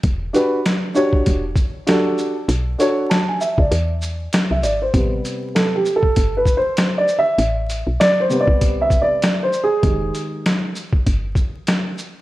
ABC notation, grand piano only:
X:1
M:4/4
L:1/16
Q:"Swing 16ths" 1/4=98
K:Em
V:1 name="Grand piano"
z2 [DFGB]2 z2 [DFG^c]2 z4 [DFGA]2 z2 | z2 [DFA^c]2 a ^g e d2 z4 e d =c- | [K:Am] c z3 (3A2 G2 A2- (3A2 B2 c2- (3c2 d2 e2- | e2 z2 (3d2 c2 d2- (3d2 e2 d2- (3d2 c2 ^G2- |
^G2 z12 z2 |]
V:2 name="Grand piano" clef=bass
z16 | z16 | [K:Am] [C,G,B,]6 z8 z2 | z6 [C,G,B,]6 z4 |
[_E,_A,G]6 z8 z2 |]